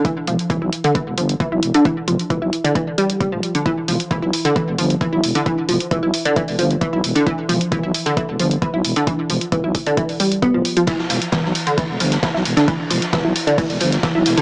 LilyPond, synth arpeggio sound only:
\new Staff \with { instrumentName = "Synth arpeggio sound" } { \clef bass \time 4/4 \key e \phrygian \tempo 4 = 133 e16 r16 f16 r16 e16 e'16 r16 d16 e16 r16 f16 r16 e16 e'16 r16 d16 | e16 r16 f16 r16 e16 e'16 r16 d16 e16 r16 g16 r16 g16 f16 r16 d16 | e16 r16 f16 r16 e16 e'16 r16 d16 e16 r16 f16 r16 e16 e'16 r16 d16 | e16 r16 f16 r16 e16 e'16 r16 d16 e16 r16 f16 r16 e16 e'16 r16 d16 |
e16 r16 f16 r16 e16 e'16 r16 d16 e16 r16 f16 r16 e16 e'16 r16 d16 | e16 r16 f16 r16 e16 e'16 r16 d16 e16 r16 g16 r16 b16 f16 r16 f16 | e16 r16 f16 r16 e16 e'16 r16 d16 e16 r16 f16 r16 e16 e'16 r16 d16 | e16 r16 f16 r16 e16 e'16 r16 d16 e16 r16 f16 r16 e16 e'16 r16 d16 | }